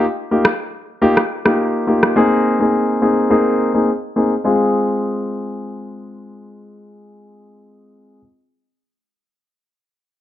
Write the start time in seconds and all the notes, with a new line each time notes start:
0.31 A#3 D#4 F4 G4
0.45 cross-stick
1.02 A#3 D#4 F4 G4
1.17 cross-stick
1.45 A#3 D#4 F4 G4, cross-stick
1.87 A#3 D#4 F4 G4
2.03 cross-stick
2.16 A#3 C4 D#4 G#4
2.60 A#3 C4 D#4 G#4
3.02 A#3 C4 D#4 G#4
3.30 A#3 C4 D#4 G#4
3.74 A#3 C4 D#4 G#4
4.16 A#3 C4 D#4 G#4
4.44 G#3 C4 F4 G#4